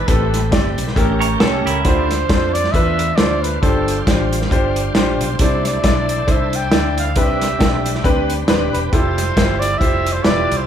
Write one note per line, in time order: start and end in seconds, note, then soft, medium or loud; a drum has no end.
0.08 0.52 A1 medium
0.08 0.74 A2 medium
0.08 0.95 A3 medium
0.08 0.15 B3 soft
0.08 0.37 C4 medium
0.08 0.37 G4 medium
0.08 0.95 G4 soft
0.08 0.52 A4 medium
0.08 0.37 A4 medium
0.08 0.37 B4 medium
0.08 0.96 B4 medium
0.08 kick loud
0.08 closed hi-hat medium
0.15 0.99 C4 medium
0.34 snare soft
0.34 closed hi-hat medium
0.51 0.74 G1 medium
0.51 0.81 C4 medium
0.51 0.81 G4 medium
0.51 0.81 A4 medium
0.51 0.81 D5 medium
0.51 kick medium
0.51 snare loud
0.51 closed hi-hat medium
0.77 0.94 B1 medium
0.77 closed hi-hat medium
0.88 snare soft
0.96 1.34 A1 medium
0.96 1.62 A2 medium
0.96 1.83 A3 medium
0.96 1.25 C#4 medium
0.96 1.83 C#4 medium
0.96 1.83 G4 medium
0.96 1.25 G4 medium
0.96 1.03 A4 medium
0.96 1.25 A4 medium
0.96 1.25 A#4 medium
0.96 kick loud
0.96 closed hi-hat medium
1.01 1.86 A#4 medium
1.20 1.40 A#4 medium
1.20 1.39 C#5 medium
1.20 closed hi-hat medium
1.40 1.62 C2 medium
1.40 1.69 C#4 medium
1.40 1.70 G4 medium
1.40 1.65 A4 medium
1.40 1.69 A4 medium
1.40 1.70 C#5 medium
1.40 snare loud
1.40 closed hi-hat medium
1.66 1.82 C#2 medium
1.66 2.08 E4 medium
1.66 2.08 G4 medium
1.66 1.86 A#4 medium
1.66 closed hi-hat medium
1.84 2.23 D2 loud
1.84 2.50 D3 medium
1.84 3.59 A3 medium
1.84 2.13 D4 medium
1.84 3.59 D4 medium
1.84 1.92 E4 soft
1.84 2.14 F4 medium
1.84 2.14 A4 medium
1.84 2.55 C5 loud
1.84 2.14 C5 medium
1.84 3.59 C5 medium
1.84 kick loud
1.84 closed hi-hat medium
1.92 3.62 F4 medium
2.11 snare soft
2.11 closed hi-hat medium
2.29 2.67 F2 medium
2.29 2.58 D4 medium
2.29 2.58 F4 medium
2.29 2.58 A4 medium
2.29 2.58 C5 medium
2.29 kick medium
2.29 snare loud
2.29 closed hi-hat medium
2.53 2.73 D5 medium
2.53 closed hi-hat medium
2.64 snare soft
2.72 3.11 E2 medium
2.72 3.02 D4 medium
2.72 3.03 F4 medium
2.72 3.03 A4 medium
2.72 3.03 B4 medium
2.72 3.17 E5 medium
2.72 kick medium
2.72 closed hi-hat medium
2.99 closed hi-hat medium
3.16 3.56 D2 medium
3.16 3.46 D4 medium
3.16 3.46 F4 medium
3.16 3.47 A4 medium
3.16 3.47 C5 medium
3.16 3.43 D5 medium
3.16 snare loud
3.16 closed hi-hat medium
3.42 3.61 B4 medium
3.42 closed hi-hat medium
3.61 4.00 G1 medium
3.61 4.28 G2 medium
3.61 5.36 G3 medium
3.61 3.91 D4 medium
3.61 5.36 D4 medium
3.61 3.91 F4 medium
3.61 5.36 F4 medium
3.61 3.91 G4 medium
3.61 4.03 A4 medium
3.61 5.36 C5 medium
3.61 3.91 C5 medium
3.61 kick loud
3.61 closed hi-hat medium
3.88 closed hi-hat medium
4.07 4.44 A1 medium
4.07 4.35 D4 medium
4.07 4.36 F4 medium
4.07 4.36 G4 medium
4.07 4.36 C5 medium
4.07 kick loud
4.07 snare loud
4.07 closed hi-hat medium
4.33 closed hi-hat medium
4.42 snare soft
4.51 4.89 G1 medium
4.51 4.79 D4 medium
4.51 4.80 F4 medium
4.51 4.80 G4 medium
4.51 4.80 C5 medium
4.51 kick medium
4.51 closed hi-hat medium
4.76 closed hi-hat medium
4.95 5.17 A#1 medium
4.95 5.23 D4 medium
4.95 5.24 F4 medium
4.95 5.24 G4 medium
4.95 5.24 C5 loud
4.95 snare loud
4.95 closed hi-hat medium
5.21 5.37 B1 medium
5.21 5.43 C5 medium
5.21 closed hi-hat medium
5.39 5.77 C2 medium
5.39 6.05 C3 medium
5.39 7.13 A3 medium
5.39 7.13 D4 soft
5.39 5.68 D4 medium
5.39 5.68 E4 medium
5.39 7.13 E4 medium
5.39 5.69 A4 medium
5.39 7.13 C5 medium
5.39 5.69 C5 medium
5.39 5.65 D5 medium
5.39 kick medium
5.39 closed hi-hat medium
5.65 6.33 D5 medium
5.65 snare soft
5.65 closed hi-hat medium
5.83 6.21 B1 medium
5.83 6.12 D4 medium
5.83 6.12 E4 medium
5.83 6.12 A4 medium
5.83 6.12 D5 medium
5.83 kick medium
5.83 snare loud
5.83 closed hi-hat medium
6.09 closed hi-hat medium
6.27 6.73 C2 medium
6.27 6.56 D4 medium
6.27 6.56 E4 medium
6.27 6.56 A4 medium
6.27 6.56 C5 medium
6.27 kick medium
6.27 closed hi-hat medium
6.31 6.57 E5 medium
6.53 6.99 G5 loud
6.53 closed hi-hat medium
6.71 7.16 D2 medium
6.71 7.00 D4 medium
6.71 7.00 E4 medium
6.71 7.01 A4 medium
6.71 7.01 D5 medium
6.71 snare loud
6.71 closed hi-hat medium
6.98 7.20 F5 medium
6.98 closed hi-hat medium
7.16 7.54 C2 medium
7.16 7.82 C3 medium
7.16 8.90 G3 medium
7.16 7.44 C4 medium
7.16 8.90 C4 medium
7.16 7.45 D4 medium
7.16 8.90 D4 medium
7.16 7.45 G4 medium
7.16 7.45 B4 medium
7.16 8.90 B4 medium
7.16 8.06 E5 medium
7.16 kick loud
7.16 closed hi-hat medium
7.41 snare soft
7.41 closed hi-hat medium
7.59 7.98 B1 medium
7.59 7.88 C4 medium
7.59 7.89 D4 medium
7.59 7.89 G4 medium
7.59 7.89 A4 medium
7.59 kick medium
7.59 snare loud
7.59 closed hi-hat medium
7.86 closed hi-hat medium
7.95 snare soft
8.04 8.42 D2 medium
8.04 8.33 C4 medium
8.04 8.33 D4 medium
8.04 8.33 G4 medium
8.04 8.33 B4 loud
8.04 kick medium
8.04 closed hi-hat medium
8.30 closed hi-hat medium
8.48 8.70 D#1 medium
8.48 8.77 C4 medium
8.48 8.77 D4 medium
8.48 8.77 G4 medium
8.48 8.77 B4 medium
8.48 snare loud
8.48 closed hi-hat medium
8.73 8.90 E1 medium
8.73 8.79 B4 medium
8.73 closed hi-hat medium
8.86 8.94 B4 medium
8.93 9.31 F1 loud
8.93 10.67 G3 medium
8.93 9.21 E4 medium
8.93 10.67 E4 medium
8.93 9.21 F4 medium
8.93 10.67 F4 medium
8.93 9.22 G4 medium
8.93 9.00 G4 soft
8.93 9.22 A4 medium
8.93 9.61 C5 loud
8.93 kick loud
8.93 closed hi-hat medium
9.00 10.67 A4 medium
9.18 snare soft
9.18 closed hi-hat medium
9.36 9.75 G1 medium
9.36 9.65 E4 medium
9.36 9.66 F4 medium
9.36 9.66 G4 medium
9.36 9.66 C5 medium
9.36 kick medium
9.36 snare loud
9.36 closed hi-hat medium
9.60 9.80 D5 medium
9.60 closed hi-hat medium
9.78 10.19 F1 medium
9.78 10.09 E4 medium
9.78 10.09 F4 medium
9.78 10.10 G4 medium
9.78 10.10 C5 medium
9.78 10.14 E5 medium
9.78 kick loud
9.78 closed hi-hat medium
10.06 closed hi-hat medium
10.12 10.25 C5 medium
10.23 10.47 E1 medium
10.23 10.53 E4 medium
10.23 10.53 F4 medium
10.23 10.54 G4 medium
10.23 10.54 B4 medium
10.23 10.58 D5 loud
10.23 snare loud
10.23 closed hi-hat medium
10.51 10.67 C2 medium
10.51 closed hi-hat medium
10.57 10.66 C5 medium